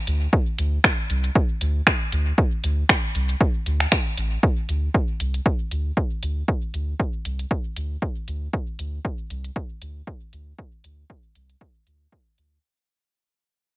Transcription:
0.07 D2, closed hi-hat
0.33 kick
0.58 D2, closed hi-hat
0.84 finger snap, kick
1.10 C2, closed hi-hat
1.24 closed hi-hat
1.35 kick
1.61 D2, closed hi-hat
1.87 finger snap, kick
2.12 D2, closed hi-hat
2.38 kick
2.64 D2, closed hi-hat
2.89 finger snap, kick
3.15 C2, closed hi-hat
3.29 closed hi-hat
3.41 kick
3.66 D2, closed hi-hat
3.80 finger snap
3.92 finger snap, kick
4.17 A1, closed hi-hat
4.43 kick
4.69 D2, closed hi-hat
4.94 kick
5.20 C2, closed hi-hat
5.34 closed hi-hat
5.46 kick
5.71 D2, closed hi-hat
5.97 kick
6.23 D2, closed hi-hat
6.48 kick
6.74 D2, closed hi-hat
7.00 kick
7.25 C2, closed hi-hat
7.39 closed hi-hat
7.51 kick
7.76 D2, closed hi-hat
8.02 kick
8.28 D2, closed hi-hat
8.53 kick
8.79 D2, closed hi-hat
9.05 kick
9.30 C2, closed hi-hat
9.44 closed hi-hat
9.56 kick
9.82 D2, closed hi-hat
10.07 kick
10.33 D2, closed hi-hat
10.59 kick
10.84 D2, closed hi-hat
11.10 kick
11.35 C2, closed hi-hat
11.50 closed hi-hat
11.61 kick
11.87 D2, closed hi-hat
12.12 kick
12.38 D2, closed hi-hat

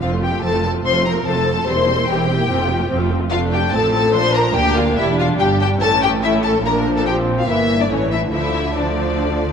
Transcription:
0.01 F1 F2 F3 C4 F4 F5
0.13 A3 F4
0.23 F3 C4 G4 G5
0.33 A3 F4
0.42 F1 F2 F3 C4 A4 A5
0.55 A3 F4
0.63 F3 C4 A4 A5
0.74 A3 F4
0.84 F1 F2 F3 C4 C5 C6
0.95 A3 F4
1.05 F3 C4 A#4 A#5
1.15 A3 F4
1.25 F1 F2 F3 C4 A4 A5
1.35 A3 F4
1.45 F3 C4
1.57 A3 F4
1.66 E1 E2 G3 C4 C5 C6
1.76 A#3 E4
1.86 G3 C4
1.97 A#3 E4
2.07 E1 E2 G3 C4 G4 G5
2.17 A#3 E4
2.27 G3 C4
2.39 A#3 E4
2.49 F1 F2 F3 C4
2.60 A3 F4
2.69 F3 C4
2.79 A3 F4
2.90 F1 F2 F3 C4
2.99 A3 F4
3.10 F3 C4
3.20 A3 F4
3.32 F1 F2 A3 D4 F4 F5
3.52 G4 G5
3.73 A1 A2 F3 C4 A4 A5
3.94 A4 A5
4.13 A#1 A#2 F3 D4 C5 C6
4.35 A#4 A#5
4.54 D2 A#3 D4 G4 G5
4.76 F4 F5
4.96 E1 E2 G3 E4 E5
5.19 F4 F5
5.38 G1 G2 G4 G5
5.61 G4 G5
5.79 A1 A2 E3 C#4 A4 A5
6.01 G4 G5
6.22 A3 C#4 E4 E5
6.44 A4 A5
6.63 A#1 A#2 F3 D4 A#4 A#5
6.96 A4 A5
7.05 C4 G4 G5
7.39 F4 F5
7.46 G1 G2 E3 A#3 E4 E5
7.80 D4 D5
7.88 A1 A2 E3 A3 C#4 C#5
8.11 E4 E5
8.31 D2 D3 F3 A3 E4 E5
8.75 F3 A3 D4 D5

